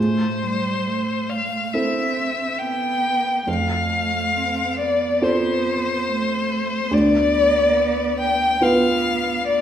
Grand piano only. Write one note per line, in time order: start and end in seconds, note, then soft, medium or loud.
0.00 3.43 A2 soft
1.74 3.43 C4 soft
1.74 3.43 E4 soft
1.74 3.43 A4 soft
3.47 6.88 F2 soft
5.21 6.88 C4 soft
5.21 6.88 F4 soft
5.21 6.88 A4 soft
6.91 9.61 D2 soft
8.61 9.61 B3 soft
8.61 9.61 F4 soft
8.61 9.61 B4 soft